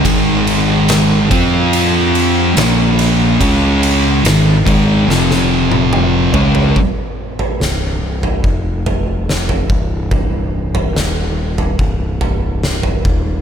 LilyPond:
<<
  \new Staff \with { instrumentName = "Distorted electric guitar" } { \clef bass \time 4/4 \key f \minor \tempo 4 = 72 <aes, ees aes>4. <f c' f'>4. <bes, f bes>4 | <des aes des'>4 <aes, ees>8 <aes, ees aes>8 <f, c f>4. <des aes des'>8 | r1 | r1 | }
  \new Staff \with { instrumentName = "Distorted electric guitar" } { \clef bass \time 4/4 \key f \minor <aes, ees aes>4. <f c' f'>4. <bes, f bes>4 | <des aes des'>4 <aes, ees>8 <aes, ees aes>8 <f, c f>4. <des aes des'>8 | r1 | r1 | }
  \new Staff \with { instrumentName = "Picked electric bass" } { \clef bass \time 4/4 \key f \minor aes,,4. f,4. bes,,4 | des,4 aes,,8 aes,,8 f,,4. des,8 | r4 c,,8 c,,8 f,,4. c,,8~ | c,,4 ees,,4 c,,4. ees,,8 | }
  \new DrumStaff \with { instrumentName = "Drums" } \drummode { \time 4/4 <bd cymr>8 cymr8 <cymr sn>8 <bd cymr>8 cymr8 cymr8 <cymr sn>8 <cymr sn>8 | <bd cymr>8 cymr8 <cymr sn>8 <bd cymr>8 sn16 sn8 tommh16 toml8 tomfh16 tomfh16 | <bd tomfh>8. tomfh16 sn8. tomfh16 bd8 tomfh8 sn16 tomfh16 bd8 | <bd tomfh>8. tomfh16 sn8. tomfh16 bd8 tomfh8 sn16 tomfh16 bd8 | }
>>